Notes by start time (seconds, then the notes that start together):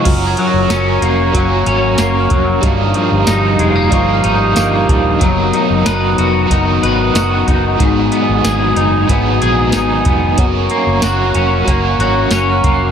Already playing: C#3 F3 G#3 C#4 D#6
0.05 F#1 F#3 C#4 F#4 A#4 C#5 A#5 C#6 F6, kick, closed hi-hat, crash
0.27 G#6
0.37 F#3, closed hi-hat
0.47 A#6
0.53 F#1
0.70 F#1 F#3 C#4 F#4, snare, closed hi-hat, tambourine
0.74 A#4
1.02 F1 A#3, closed hi-hat
1.33 F#1 F#3 C#4, kick, closed hi-hat
1.37 F#4 A#4
1.66 G#1 C#4, closed hi-hat
1.98 F#1 A#3 C#6, snare, closed hi-hat, tambourine
2.20 F6
2.30 F1 F#3, kick, closed hi-hat
2.61 G1 G2 G3 D#4 G4 F5 D#6, kick, closed hi-hat
2.65 F4 A#4
2.94 F3, closed hi-hat
3.12 G1
3.27 G1 D#4, snare, closed hi-hat, tambourine
3.59 F1 G#3, closed hi-hat
3.76 A#3
3.90 G1 F3 G3 D#4 C#6, kick, closed hi-hat
3.95 F4 A#4
4.13 F6
4.24 G#1 D#4, closed hi-hat
4.35 G6
4.56 G1 A#3, snare, closed hi-hat, tambourine
4.89 D#1 F3, kick, closed hi-hat
5.19 F#1 F#3 B3 F#4, kick, closed hi-hat
5.23 D#4 A#4
5.53 D#4, closed hi-hat
5.70 F#1
5.86 F#1 B4, snare, closed hi-hat, tambourine
6.18 F1 F#4, closed hi-hat
6.47 F#1 F#3 B3 D#4, kick, closed hi-hat
6.52 D#4 A#4
6.83 G#1 B4, closed hi-hat
7.14 F#1 F#4, snare, closed hi-hat, tambourine
7.47 F#1 D#4, kick, closed hi-hat
7.77 G#1 G#2 D#3 F#3 G#5, kick, closed hi-hat
7.82 B3 D#4 G#4
8.12 B3, closed hi-hat
8.29 G#1
8.44 G#1 G#4, snare, closed hi-hat, tambourine
8.76 F#1 D#4, closed hi-hat
9.07 G#1 G#2 D#3 F#3 B3 A#5, kick, closed hi-hat
9.12 B3 D#4 G#4
9.41 A#1 G#4, closed hi-hat
9.72 G#1 D#4, snare, closed hi-hat, tambourine
10.05 F1 B3, kick, closed hi-hat
10.38 F#1 F#3 C#4 F#4 A#4 C#5 A#5 C#6, kick, closed hi-hat
10.70 A#3, closed hi-hat
10.86 F#1
11.00 F#1 F#3 C#4 F#4, snare, closed hi-hat, tambourine
11.05 A#4
11.34 F1 C#4, closed hi-hat
11.65 F#1 F#3 A#3 C#4, kick, closed hi-hat
11.70 F#4 A#4
11.98 G#1 F#4, closed hi-hat
12.30 F#1 C#4 C#6, snare, closed hi-hat, tambourine
12.52 F6
12.64 F1 A#3, kick, closed hi-hat
12.74 F#6